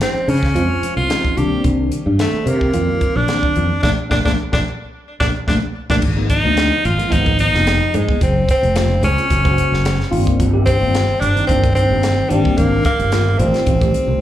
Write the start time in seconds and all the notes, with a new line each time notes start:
0.01 F3 G#3 C4 C#4 D#4, snare, closed hi-hat
0.14 muted fretless electric bass stroke
0.28 C#3 C#4, open hi-hat
0.43 kick, snare
0.54 F2 F3 G#3 C#4 F4 C5, closed hi-hat
0.82 muted fretless electric bass stroke, closed hi-hat
0.96 C2 F4
1.09 F3 G#3 C4 C#4 D#4, snare, closed hi-hat
1.24 muted fretless electric bass stroke, kick
1.36 C2 D#3 G3 A#3 C4 D4 G4, closed hi-hat
1.64 C2, kick, closed hi-hat
1.92 closed hi-hat
2.06 G2
2.18 D#3 G3 A3 A#3 C4 D4, snare, closed hi-hat
2.33 muted fretless electric bass stroke
2.46 C3 A#3, closed hi-hat
2.61 kick
2.73 F2 D#3 G3 A#3 C4 F4, closed hi-hat
3.01 muted fretless electric bass stroke, kick, closed hi-hat
3.16 A#1 D4
3.28 D#3 G3 A#3 C4 D4, snare, closed hi-hat
3.43 muted fretless electric bass stroke, kick
3.56 F2, closed hi-hat
3.83 A#1 A3 A#3 D4, kick, snare
4.09 A#1 A3 A#3 D4, kick, snare
4.24 A#1 A3 A#3 D4, kick, snare
4.52 A#1 A3 A#3 D4, kick, snare
5.20 A#1 A3 A#3 D4, kick, snare
5.47 A#1 A3 A#3 D4, kick, snare
5.90 A#1 A3 A#3 D4, kick, snare
6.02 G#1, kick, crash
6.16 F3 G#3 A#3 B3 D#4
6.30 D#4, kick, closed hi-hat
6.43 D2 F3 G#3 A#3 B3 D#4
6.57 snare, closed hi-hat
6.85 G#1 F4, closed hi-hat
6.98 F3 G#3 A#3 B3 F4, closed hi-hat
7.10 G#1 F3 G#3 A#3 B3 D#4, kick, closed hi-hat
7.26 kick, closed hi-hat
7.37 F3 G#3 A#3 B3 D#4, closed hi-hat
7.54 F1, snare
7.67 snare, closed hi-hat
7.94 G#2 G#3, closed hi-hat
8.09 kick
8.21 F#1 C4, kick, closed hi-hat
8.49 C4, kick, closed hi-hat
8.62 F1, closed hi-hat
8.75 C#3 G#3 A#3 C4 F4, snare, closed hi-hat
9.03 C#2 C#4, closed hi-hat
9.18 closed hi-hat
9.30 F#1, kick, closed hi-hat
9.44 C#3 G#3 A#3 F#4 C5, kick, closed hi-hat
9.58 closed hi-hat
9.72 F#1, snare
9.85 snare, closed hi-hat
10.01 snare
10.11 G1 D#3 G3 A#3 C4 F4, open hi-hat
10.27 kick, closed hi-hat
10.39 G1, kick, closed hi-hat
10.53 D#3 G3 A#3 C4 G4
10.66 C4, kick, closed hi-hat
10.80 G1 D#3 G3 A#3 C4 F4
10.94 snare, closed hi-hat
11.20 G1 D4, closed hi-hat
11.35 D#3 G3 A#3 C4 D#4, closed hi-hat
11.47 G1 D#3 G3 A#3 C4 D4, kick, closed hi-hat
11.64 kick, closed hi-hat
11.75 D#3 G3 A#3 C4 D#4, closed hi-hat
11.90 G1
12.03 snare, closed hi-hat
12.29 G#1 D#3 G3 A#3 C4 D4, closed hi-hat
12.45 kick
12.57 G#1 A#3, kick, closed hi-hat
12.85 A#3, kick, closed hi-hat
12.99 G1, closed hi-hat
13.12 D#3 G3 A#3 C4 F4, snare, closed hi-hat
13.38 A1 D#3 G3 A3 C4 F4, closed hi-hat
13.54 snare, closed hi-hat
13.66 A1, kick, closed hi-hat
13.81 D#3 G3 A3 C4 G4, kick, closed hi-hat
13.94 closed hi-hat
14.07 C2